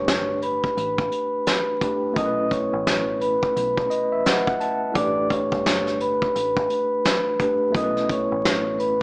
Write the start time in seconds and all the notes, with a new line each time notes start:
Already playing: G1 A2 A3 D4 G4 B4 C#5 C#6
0.08 snare, closed hi-hat
0.42 B4 B5, closed hi-hat
0.64 kick
0.77 A1, closed hi-hat
0.98 kick
1.12 closed hi-hat
1.47 snare, closed hi-hat
1.81 A2 A3 D4 G4 B4, kick, closed hi-hat
2.12 B2 A3 C#4
2.16 B1 E4 A#4 D#5 D#6, kick, closed hi-hat
2.25 B4
2.49 C#5 C#6, kick, closed hi-hat
2.73 A1
2.87 snare, closed hi-hat
3.20 B4 B5, closed hi-hat
3.43 kick
3.56 B1, closed hi-hat
3.77 kick
3.90 D#5, closed hi-hat
4.12 E5
4.26 F#5, snare, closed hi-hat
4.47 F#5, kick
4.60 A5, closed hi-hat
4.92 A2 A3 D4 D5, kick
4.96 A1 G4 B4 D6, closed hi-hat
5.29 C#5, kick, closed hi-hat
5.52 G1, kick
5.66 snare, closed hi-hat
5.87 snare
6.00 B4 B5, closed hi-hat
6.22 kick
6.35 A1, closed hi-hat
6.57 kick
6.70 closed hi-hat
7.05 snare, closed hi-hat
7.39 A2 A3 D4 G4 B4, kick, closed hi-hat
7.70 B2 A3 C#4
7.75 B1 E4 A#4 D#5 D#6, kick, closed hi-hat
7.84 B4
7.97 snare
8.09 C#5 C#6, kick, closed hi-hat
8.32 A1
8.45 snare, closed hi-hat
8.79 B4 B5, closed hi-hat